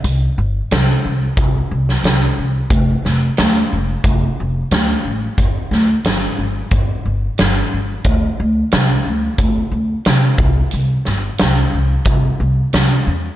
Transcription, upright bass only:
\new Staff \with { instrumentName = "Upright bass" } { \clef bass \time 4/4 \key c \lydian \tempo 4 = 90 c,8 g,,8 c,8 c,8 c,8 c,8 c,8 c,8 | f,,8 f,,8 d,8 f,,8 f,,8 f,,8 d,8 a,,8 | g,,8 d,8 g,,8 g,,8 g,,8 g,,8 g,,8 g,,8 | d,8 d,8 c,8 d,8 d,8 d,8 c8 c,8 |
c,8 g,,8 c,8 c,8 c,8 c,8 c,8 e,8 | }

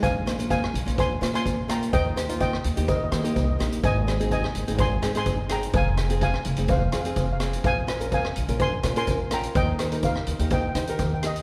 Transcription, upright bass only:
\new Staff \with { instrumentName = "Upright bass" } { \clef bass \time 4/4 \key bes \dorian \tempo 4 = 126 bes,,4. bes,,16 bes,,8. bes,8 bes,,4 | ees,4. ees,16 ees,8. ees8 c,8 bes,,8 | aes,,4. aes,,16 aes,,8. aes,8 g,,4 | f,,4. f,,16 f,,8. f,8 f,,4 |
bes,,4. bes,,16 bes,,8. bes,8 bes,,4 | ees,4. ees,16 ees,8. ees8 ees,4 | }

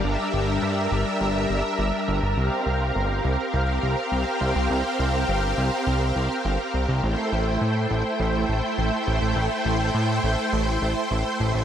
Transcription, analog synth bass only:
\new Staff \with { instrumentName = "Analog synth bass" } { \clef bass \time 4/4 \key c \mixolydian \tempo 4 = 103 g,,16 r16 g,,8 g,8 g,,16 r16 g,,8 g,,16 r16 g,,16 r16 g,,16 g,,16 | c,16 r16 c,8 g,,8 c,16 r16 c,8 c,16 r16 c,16 r16 c,16 c,16 | c,16 r16 c,8 g,,8 c,16 r16 c,8 c,16 r16 g,,16 r16 c,16 c,16 | a,,16 r16 a,,8 a,8 a,,16 r16 a,,8 a,,16 r16 a,,16 r16 a,,16 a,,16 |
a,,16 r16 a,,8 a,8 a,,16 r16 a,,8 a,,16 r16 a,,16 r16 a,,16 a,,16 | }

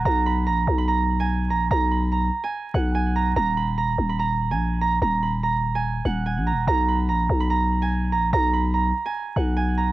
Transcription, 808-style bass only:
\new Staff \with { instrumentName = "808-style bass" } { \clef bass \time 4/4 \key aes \dorian \tempo 4 = 145 ces,4 bes,,8 ces,2 bes,,8 | ces,4. r4 ces,4. | ees,,4. ees,,4~ ees,,16 bes,,4~ bes,,16 | ees,,2~ ees,,8 ees,,8. bes,,16. ees,,16. |
ces,4 bes,,8 ces,2 bes,,8 | ces,4. r4 ces,4. | }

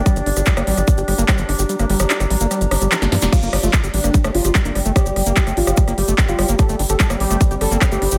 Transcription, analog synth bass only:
\new Staff \with { instrumentName = "Analog synth bass" } { \clef bass \time 4/4 \key g \minor \tempo 4 = 147 r16 g,,16 g,,16 g,,16 r16 g,,16 a,,16 g,,16 r16 g,,16 g,,16 g,,16 r16 g,,16 g,,16 g,,16 | r16 g,,16 g,,16 g,,16 r16 g,,16 a,,16 g,,16 r16 g,,16 g,,16 g,,16 r16 g,,16 g,16 f,,16 | r16 g,,16 g,,16 g,,16 r16 g,,16 a,,16 g,,16 r16 g,,16 g,,16 g,,16 r16 g,,16 g,,16 g,,16 | r16 g,,16 g,,16 g,,16 r16 g,,16 a,,16 g,,16 r16 g,,16 g,,16 g,,16 r16 g,,16 g,,16 g,,16 |
r16 g,,16 g,,16 g,,16 r16 g,,16 a,,16 g,,16 r16 g,,16 g,,16 g,,16 r16 g,,16 g,,16 g,,16 | }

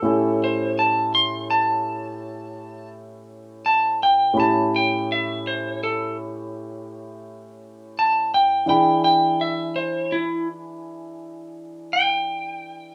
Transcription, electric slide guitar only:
\new Staff \with { instrumentName = "Electric slide guitar" } { \time 12/8 \key a \mixolydian \tempo 4. = 56 a'8 c''8 a''8 c'''8 a''2 r4 a''8 g''8 | a''8 g''8 e''8 c''8 a'8 r2 r8 a''8 g''8 | g''8 g''8 e''8 c''8 e'8 r2 g''4. | }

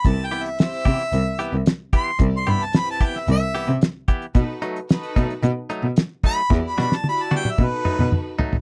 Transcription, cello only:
\new Staff \with { instrumentName = "Cello" } { \clef bass \time 4/4 \key c \lydian \tempo 4 = 112 c,8 r4 c8 c,8. c,4~ c,16 | c,8 g,4. c,8. c8 r8. | b,8 r4 b,8 b,8. b,4~ b,16 | e,8 b,4. b,8. b,8 r8. | }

